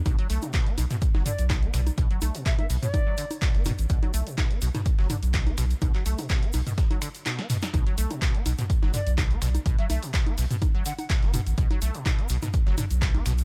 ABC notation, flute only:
X:1
M:4/4
L:1/16
Q:"Swing 16ths" 1/4=125
K:Bm
V:1 name="Flute"
z8 z2 d z4 z | z4 e e z d4 z4 z | z16 | z16 |
z8 z2 d z4 z | z e e z6 z f f z4 | z16 |]